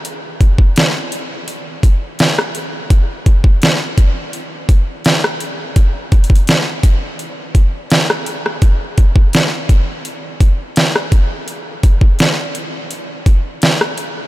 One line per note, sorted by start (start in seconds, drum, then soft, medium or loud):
0.05 closed hi-hat medium
0.41 kick loud
0.41 closed hi-hat medium
0.58 kick loud
0.76 snare loud
0.76 closed hi-hat medium
1.12 closed hi-hat medium
1.48 closed hi-hat medium
1.83 kick loud
1.83 closed hi-hat medium
2.19 snare loud
2.19 closed hi-hat medium
2.38 cross-stick medium
2.55 closed hi-hat medium
2.90 kick loud
2.90 closed hi-hat medium
3.26 kick loud
3.26 closed hi-hat medium
3.44 kick loud
3.62 snare loud
3.62 closed hi-hat medium
3.98 kick loud
3.98 closed hi-hat medium
4.33 closed hi-hat medium
4.69 kick loud
4.69 closed hi-hat medium
5.05 snare loud
5.05 closed hi-hat medium
5.24 cross-stick medium
5.40 closed hi-hat medium
5.76 kick loud
5.76 closed hi-hat medium
6.12 kick loud
6.12 closed hi-hat soft
6.24 closed hi-hat medium
6.30 kick medium
6.36 closed hi-hat medium
6.47 snare loud
6.47 closed hi-hat medium
6.83 kick medium
6.83 closed hi-hat medium
7.19 closed hi-hat medium
7.55 kick loud
7.55 closed hi-hat medium
7.90 snare loud
7.90 closed hi-hat medium
8.10 cross-stick medium
8.26 closed hi-hat medium
8.46 cross-stick medium
8.62 kick loud
8.62 closed hi-hat medium
8.98 kick loud
8.98 closed hi-hat medium
9.16 kick loud
9.33 snare loud
9.33 closed hi-hat medium
9.69 kick loud
9.69 closed hi-hat medium
10.05 closed hi-hat medium
10.41 kick loud
10.41 closed hi-hat medium
10.76 snare loud
10.76 closed hi-hat medium
10.96 cross-stick medium
11.12 kick loud
11.12 closed hi-hat medium
11.48 closed hi-hat medium
11.83 kick loud
11.83 closed hi-hat medium
12.01 kick medium
12.19 snare loud
12.19 closed hi-hat medium
12.55 closed hi-hat medium
12.91 closed hi-hat medium
13.26 kick loud
13.26 closed hi-hat medium
13.62 snare loud
13.62 closed hi-hat medium
13.81 cross-stick medium
13.98 closed hi-hat medium